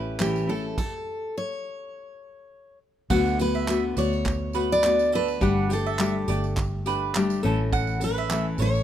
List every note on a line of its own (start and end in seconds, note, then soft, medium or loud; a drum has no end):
0.00 0.73 A1 medium
0.00 0.19 A3 soft
0.00 0.20 C#4 soft
0.00 0.19 E4 medium
0.00 0.20 G4 medium
0.00 0.19 B4 medium
0.19 0.49 A2 medium
0.19 0.49 E3 medium
0.19 0.49 A3 medium
0.19 0.47 C#4 medium
0.19 0.46 E4 medium
0.19 0.50 G4 medium
0.19 clap loud
0.19 tambourine medium
0.36 tambourine soft
0.47 0.79 A3 soft
0.47 0.78 C#4 soft
0.47 0.77 E4 medium
0.47 0.64 A4 medium
0.47 0.77 A4 medium
0.78 1.37 A4 medium
0.78 kick loud
0.78 crash medium
1.38 2.78 C#5 medium
3.10 3.93 D2 medium
3.10 3.39 D3 medium
3.10 3.39 A3 loud
3.10 3.39 B3 loud
3.10 3.37 F#4 loud
3.10 3.38 F#5 loud
3.10 kick loud
3.10 crash loud
3.10 tambourine medium
3.26 tambourine soft
3.39 3.67 A3 soft
3.39 3.68 B3 soft
3.39 3.68 F#4 soft
3.39 3.98 B4 medium
3.39 tambourine medium
3.55 3.82 E5 medium
3.67 3.96 D3 medium
3.67 3.97 A3 medium
3.67 3.97 B3 medium
3.67 3.95 F#4 medium
3.67 clap loud
3.67 tambourine medium
3.96 5.38 D2 medium
3.96 4.56 A3 soft
3.96 4.54 B3 medium
3.96 4.53 F#4 medium
3.96 4.72 C#5 medium
3.96 4.13 D5 medium
3.96 tambourine medium
4.13 tambourine soft
4.25 kick loud
4.25 clap medium
4.25 tambourine medium
4.53 4.84 F#4 medium
4.53 4.82 B4 medium
4.53 tambourine soft
4.55 4.82 A3 soft
4.55 4.83 B3 soft
4.55 tambourine medium
4.72 5.11 D5 loud
4.82 5.40 D3 medium
4.82 5.41 A3 medium
4.82 5.41 B3 medium
4.82 5.42 F#4 medium
4.82 clap loud
4.82 tambourine medium
4.99 tambourine soft
5.12 5.28 A4 medium
5.12 5.74 B4 loud
5.12 tambourine medium
5.28 tambourine soft
5.41 6.24 G1 loud
5.41 5.70 G3 medium
5.41 5.70 A3 medium
5.41 5.70 D4 medium
5.41 5.68 G4 loud
5.41 5.70 F#5 loud
5.41 kick loud
5.41 tambourine medium
5.69 5.98 A3 soft
5.69 5.99 D4 medium
5.69 5.99 G4 soft
5.69 tambourine medium
5.73 6.55 A4 medium
5.86 6.14 E5 medium
5.98 6.28 G3 medium
5.98 6.28 A3 medium
5.98 6.28 D4 medium
5.98 6.27 G4 medium
5.98 clap loud
5.98 tambourine medium
6.28 7.40 G1 loud
6.28 6.88 A3 soft
6.28 6.86 D4 soft
6.28 6.85 G4 medium
6.28 6.44 D5 medium
6.28 tambourine medium
6.44 tambourine soft
6.56 kick loud
6.56 clap loud
6.56 tambourine soft
6.86 7.15 A3 medium
6.86 7.16 D4 medium
6.86 7.15 G4 medium
6.86 7.14 B4 medium
6.86 tambourine soft
6.86 tambourine medium
7.14 7.44 G3 medium
7.14 7.43 A3 medium
7.14 7.43 D4 medium
7.14 7.42 G4 medium
7.14 clap loud
7.14 tambourine medium
7.30 tambourine medium
7.43 8.56 A1 medium
7.43 8.02 A2 medium
7.43 8.02 E3 medium
7.43 8.02 A3 medium
7.43 8.01 C#4 medium
7.43 8.00 A4 medium
7.43 7.60 A4 medium
7.43 tambourine medium
7.73 8.00 F#5 loud
7.73 kick loud
7.73 tambourine medium
7.87 tambourine soft
8.00 8.29 A3 soft
8.00 8.30 C#4 soft
8.00 8.30 A4 medium
8.00 8.62 B4 medium
8.00 tambourine medium
8.18 8.45 E5 medium
8.29 8.59 E3 medium
8.29 8.59 A3 medium
8.29 8.58 C#4 medium
8.29 8.57 A4 medium
8.29 clap loud
8.29 tambourine medium
8.58 8.83 A1 loud
8.58 8.83 A3 soft
8.58 8.83 C#4 soft
8.58 8.83 A4 medium
8.58 8.75 C#5 medium
8.58 8.83 C#5 loud
8.58 tambourine medium
8.75 tambourine soft